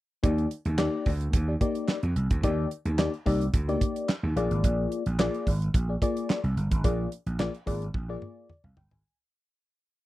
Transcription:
0.23 D#2 A#3 D#4 G4 D5, kick, closed hi-hat
0.38 closed hi-hat
0.51 closed hi-hat
0.65 D#2, closed hi-hat
0.78 A#3 D#4 G4 D5, snare, clap
1.06 D2, kick, open hi-hat
1.21 closed hi-hat
1.33 D#2, kick, closed hi-hat
1.48 G4 D5
1.61 A#3 D#4 G4 D5, kick, closed hi-hat
1.75 closed hi-hat
1.88 snare, clap
2.03 F2, closed hi-hat
2.16 C2, closed hi-hat
2.30 D2, kick, closed hi-hat
2.43 D#2 A#3 D#4 G4 D5, kick, closed hi-hat
2.71 closed hi-hat
2.85 D#2, closed hi-hat
2.99 A#3 D#4 G4 D5, snare, clap
3.14 closed hi-hat
3.26 C2 A#3 D#4 G4 D5, kick, open hi-hat
3.41 closed hi-hat
3.54 D2, kick, closed hi-hat
3.68 A#3 D#4 G4 D5, closed hi-hat
3.81 kick, closed hi-hat
3.96 closed hi-hat
4.09 snare, clap
4.23 D#2
4.36 A#1 A#3 F4 G#4 D5, closed hi-hat
4.51 G#1, closed hi-hat
4.64 A#1, kick, closed hi-hat
4.92 closed hi-hat
5.06 A#1, closed hi-hat
5.19 A#3 F4 G#4 D5, snare, clap
5.34 closed hi-hat
5.47 G#1, kick, open hi-hat
5.62 closed hi-hat
5.74 A#1, kick, closed hi-hat
5.89 G#4 D5
6.02 A#3 F4 G#4 D5, kick, closed hi-hat
6.17 closed hi-hat
6.30 snare, clap
6.44 C2, closed hi-hat
6.57 G1, closed hi-hat
6.71 G#1, kick, closed hi-hat
6.84 A#1 A#3 F4 G#4 D5, kick, closed hi-hat
7.12 closed hi-hat
7.26 A#1, closed hi-hat
7.39 A#3 F4 G#4 D5, snare, clap
7.54 closed hi-hat
7.66 G#1 A#3 F4 G#4 D5, kick, open hi-hat
7.82 closed hi-hat
7.94 A#1, kick, high tom
8.09 A#3 F4 G#4 D5
8.22 mid tom
8.49 D5, mid tom
8.64 C2 F5, mid tom
8.77 G1 G5, floor tom
8.91 G#1 G#5, floor tom

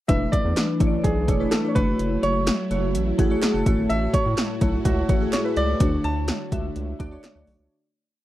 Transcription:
0.08 E1 E3 A3 D4 E4 B4 E5, kick, closed hi-hat
0.32 D5, kick, closed hi-hat
0.45 E2
0.56 snare, clap, closed hi-hat
0.80 A1 A3 D4 E4 C#5, kick, closed hi-hat
0.87 D5
1.04 B1 G#4, kick, closed hi-hat
1.28 E1 A3 D4 E4 C#5, kick, closed hi-hat
1.40 A3 D4 E4 B4
1.51 A4, snare, clap, closed hi-hat
1.63 A3 D4 E4 B4
1.68 C#5
1.75 F#1 F#3 A3 E4 F#4 B4 C#5, kick, closed hi-hat
1.99 F#1, closed hi-hat
2.23 F#1 C#5, closed hi-hat
2.47 snare, clap, closed hi-hat
2.70 F#1 A3 E4 F#4 C#5, closed hi-hat
2.95 A1, closed hi-hat
3.18 A1 A3 E4 F#4 G#4 F#5, kick, closed hi-hat
3.30 A3 E4 F#4 C#5
3.42 A5, snare, clap, closed hi-hat
3.54 F#1 A3 E4 F#4 C#5
3.66 A1 A2 A3 E4 F#4 C#5, kick, closed hi-hat
3.78 G#1
3.89 A1 E5, closed hi-hat
4.13 C#5, kick, closed hi-hat
4.26 A2
4.37 snare, clap, closed hi-hat
4.61 B1 A3 E4 F#4 C#5, kick, closed hi-hat
4.85 C#2 F#4, kick, closed hi-hat
5.08 A1 A3 E4 F#4 C#5, kick, closed hi-hat
5.20 A3 E4 F#4 G#4
5.33 C#5, snare, clap, closed hi-hat
5.44 A3 E4 F#4 B4
5.57 C#2 D5, closed hi-hat
5.80 D2 D3 A3 D4 F#4 C#5, kick, closed hi-hat
6.04 D2 A5, closed hi-hat
6.28 snare, clap, closed hi-hat
6.52 C#2 A3 D4 F#4 E5, kick, closed hi-hat
6.76 C#2, closed hi-hat
6.99 D2 A3 D4 F#4 D5, kick, closed hi-hat
7.11 A3 D4 F#4 C#5
7.24 snare, clap, closed hi-hat
7.35 D2 A3 D4 F#4 C#5
7.47 B1, open hi-hat
7.59 C#2

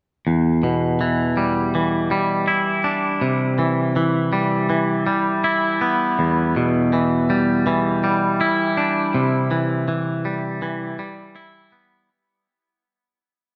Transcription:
0.27 E2
0.63 B2
1.01 E3
1.37 G3
1.75 E3
2.11 G3
2.48 E4
2.84 D4
3.21 C3
3.59 E3
3.96 E3
4.33 G3
4.70 E3
5.07 G3
5.44 E4
5.81 B3
6.19 E2
6.57 B2
6.93 E3
7.30 G3
7.67 E3
8.04 G3
8.41 E4
8.77 D4
9.14 C3
9.51 E3
9.88 E3
10.25 G3
10.62 E3
10.99 G3
11.36 E4
11.72 B3

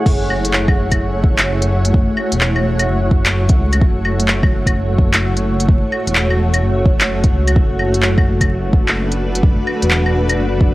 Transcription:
Already playing: A3 E4 G#4 C#5 F#5
0.06 F#1, kick, crash
0.25 F#4
0.30 claves
0.45 closed hi-hat
0.53 clap
0.68 kick, claves
0.92 kick, closed hi-hat, claves
1.24 kick
1.38 clap, closed hi-hat, claves
1.62 closed hi-hat
1.85 closed hi-hat
1.94 kick
2.17 claves
2.32 E1, closed hi-hat
2.41 clap
2.56 claves
2.79 closed hi-hat, claves
2.88 F#1
3.11 F#1, kick
3.26 clap, closed hi-hat
3.49 C#2, kick, closed hi-hat
3.58 C#2
3.73 closed hi-hat, claves
3.81 F#1, kick
4.05 claves
4.19 closed hi-hat
4.28 clap
4.43 kick, claves
4.66 kick, closed hi-hat, claves
4.98 kick
5.13 clap, closed hi-hat, claves
5.37 closed hi-hat
5.60 closed hi-hat
5.68 kick
5.92 claves
6.07 E1, closed hi-hat
6.15 clap
6.30 claves
6.54 closed hi-hat, claves
6.62 F#1
6.85 F#1, kick
7.01 clap, closed hi-hat
7.24 kick, closed hi-hat
7.33 C#2
7.47 closed hi-hat, claves
7.56 F#1, kick
7.65 D4
7.79 claves
7.93 B4, closed hi-hat
8.03 clap
8.18 F#5, kick, claves
8.41 kick, closed hi-hat, claves
8.73 kick
8.88 clap, closed hi-hat, claves
9.12 closed hi-hat
9.35 closed hi-hat
9.43 kick
9.67 claves
9.82 E1, closed hi-hat
9.90 clap
10.06 claves
10.29 closed hi-hat, claves
10.38 F#1
10.61 F#1, kick

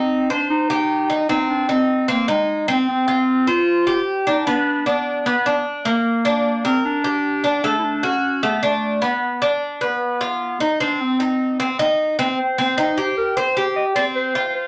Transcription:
Already playing: C4 D#4
0.30 D4 C5
0.50 D#4
0.70 G4
1.10 D#4
1.29 C4 D#4
1.49 D4
1.69 C4 D#4
2.08 A#3 C4
2.28 G#3 D#4
2.68 C4
2.89 C4
3.08 F4
3.47 F4 C5
3.87 G4
4.27 D4 D#4
4.47 B3 D4
4.86 B3 D4
5.26 B3
5.46 D4
5.85 A#3
6.25 D4
6.65 C4 A#4
6.85 D4
7.04 G4
7.44 D4
7.64 A3 D4
7.79 E4
7.84 D4
8.03 C#4 F#4
8.43 A3 B3
8.63 A3 D4
9.02 B3
9.42 D4
9.81 B3 B4
10.21 F4
10.60 D#4
10.80 C4 D4
11.01 C4
11.20 D#4
11.60 C4
11.79 D#4
12.19 C4
12.38 C5
12.58 C4
12.78 D#4
12.97 G4
13.17 A#4
13.37 C5
13.57 G4
13.76 D#5
13.95 C4 D5
14.15 C5
14.35 F4
14.55 C5

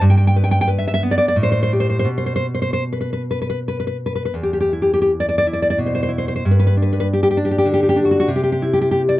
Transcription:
0.01 G2
0.10 G5
0.17 G5
0.27 G5
0.36 B4
0.44 G5
0.51 G5
0.61 G5
0.68 B4
0.78 E5
0.88 E5
0.94 E5
1.03 B3
1.11 D5
1.18 D5
1.28 D5
1.36 A2
1.43 C5
1.52 C5
1.63 C5
1.73 G4
1.80 C5
1.90 C5
1.99 C5
2.04 B2
2.18 C5
2.26 C5
2.36 C5
2.55 C5
2.62 C5
2.73 C5
2.93 B4
3.01 B4
3.13 B4
3.31 B4
3.42 B4
3.50 B4
3.68 B4
3.80 B4
3.87 B4
4.06 B4
4.16 B4
4.25 B4
4.34 E2
4.43 G4
4.53 G4
4.60 G4
4.73 E4
4.82 G4
4.94 G4
5.02 G4
5.20 D5
5.29 D5
5.38 D5
5.47 E4
5.53 D5
5.62 D5
5.70 D5
5.78 B2
5.86 C5
5.95 C5
6.03 C5
6.08 E4
6.18 C5
6.28 C5
6.36 C5
6.45 G2
6.51 B4
6.59 B4
6.67 B4
6.77 D4
6.82 B4
6.93 B4
7.00 B4
7.13 G4
7.23 G4
7.31 G4
7.37 D4
7.45 G4
7.51 G4
7.58 G4
7.66 D3
7.74 G4
7.83 G4
7.89 G4
7.96 D4
8.05 F#4
8.11 F#4
8.20 F#4
8.28 C3
8.36 G4
8.44 G4
8.52 G4
8.62 E4
8.73 G4
8.81 G4
8.91 G4
9.09 D5

